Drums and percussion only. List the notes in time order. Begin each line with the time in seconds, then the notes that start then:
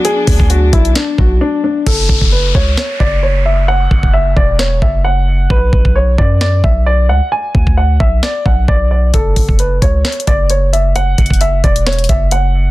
0.05 closed hi-hat
0.27 kick, open hi-hat
0.40 kick
0.50 closed hi-hat
0.73 kick, closed hi-hat
0.85 closed hi-hat
0.95 snare, closed hi-hat
1.18 kick
1.87 kick, crash
2.09 kick
2.21 kick
2.55 kick
2.77 snare
3.00 kick
3.91 kick
4.03 kick
4.37 kick
4.59 snare
4.82 kick
5.50 kick
5.73 kick
5.85 kick
6.18 kick
6.41 snare
6.64 kick
7.55 kick
7.67 kick
8.00 kick
8.23 snare
8.46 kick
8.68 kick
9.14 kick, closed hi-hat
9.36 kick, open hi-hat
9.49 kick
9.59 closed hi-hat
9.82 kick, closed hi-hat
10.05 snare, closed hi-hat
10.12 closed hi-hat
10.20 closed hi-hat
10.27 kick, closed hi-hat
10.50 closed hi-hat
10.73 closed hi-hat
10.96 closed hi-hat
11.18 kick, closed hi-hat, open hi-hat
11.26 closed hi-hat
11.30 kick, closed hi-hat
11.41 closed hi-hat
11.64 kick, closed hi-hat
11.76 closed hi-hat
11.87 snare, closed hi-hat
11.93 closed hi-hat
11.99 closed hi-hat
12.04 closed hi-hat
12.09 kick, closed hi-hat
12.31 closed hi-hat